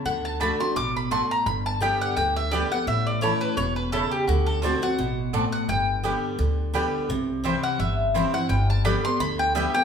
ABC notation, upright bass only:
X:1
M:4/4
L:1/8
Q:"Swing" 1/4=170
K:G
V:1 name="Upright bass" clef=bass
D,,4 A,,,4 | G,,,4 D,,4 | A,,,4 E,,,4 | D,,4 A,,,4 |
G,,,4 D,,4 | C,,4 G,,,4 | G,,,4 D,,4 |]